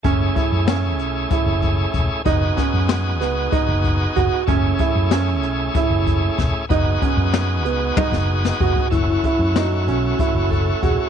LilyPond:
<<
  \new Staff \with { instrumentName = "Vibraphone" } { \time 7/8 \key fis \dorian \tempo 4 = 95 r2. r8 | r2. r8 | r2. r8 | r2. r8 |
e'4 fis'4. a'8 gis'8 | }
  \new Staff \with { instrumentName = "Tonewheel organ" } { \time 7/8 \key fis \dorian <a cis' e' gis'>2.~ <a cis' e' gis'>8 | <b dis' fis' gis'>2.~ <b dis' fis' gis'>8 | <a cis' e' gis'>2.~ <a cis' e' gis'>8 | <b dis' fis' gis'>2.~ <b dis' fis' gis'>8 |
<a cis' e' fis'>2.~ <a cis' e' fis'>8 | }
  \new Staff \with { instrumentName = "Grand piano" } { \time 7/8 \key fis \dorian cis'8 e'8 cis'4 e'4 r8 | dis'8 cis'4 b8 dis'4 fis'8 | cis'8 e'8 cis'4 e'4 r8 | dis'8 cis'4 b8 dis'4 fis'8 |
r8 e'8 dis'8 cis'8 e'4 fis'8 | }
  \new Staff \with { instrumentName = "Fretless electric bass" } { \clef bass \time 7/8 \key fis \dorian fis,,8 r16 fis,8. b,,8 r16 fis,,8. e,,16 r16 | fis,,8 r16 fis,8. cis,8 r16 fis,,8. fis,,16 r16 | fis,,8 r16 fis,8. b,,8 r16 fis,,8. e,,16 r16 | fis,,8 r16 fis,8. cis,8 r16 fis,,8. fis,,16 r16 |
fis,,8 r16 fis,8. b,,8 r16 fis,,8. e,,16 r16 | }
  \new DrumStaff \with { instrumentName = "Drums" } \drummode { \time 7/8 <hh bd>8 <hh bd>8 <hh sn>8 hh8 <hh bd>8 <hh bd>8 <hh bd>8 | <hh bd>8 <hh bd sn>8 <hh sn>8 <hh sn>8 <hh bd>8 <hh bd>8 <hh bd>8 | <hh bd>8 <hh bd>8 <hh sn>8 hh8 <hh bd>8 <hh bd>8 <hh bd sn>8 | <hh bd>8 <hh bd>8 <hh sn>8 hh8 <bd tommh>16 sn8 sn16 bd16 bd16 |
<hh bd>8 <hh bd>8 <hh sn>8 hh8 <hh bd>8 <hh bd>8 <hh bd>8 | }
>>